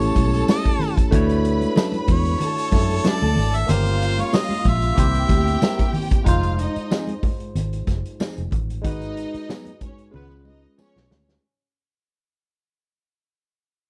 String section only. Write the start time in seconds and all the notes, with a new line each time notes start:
Already playing: A4 A5
1.13 B4 B5
2.41 A4 A5
3.70 F4 F5
4.99 G4 G5
6.27 F4 F5
6.60 D#4 D#5
8.85 D#4 D#5
9.83 C#4 C#5
10.14 B3 B4
10.46 D#4 D#5
10.78 C#4 C#5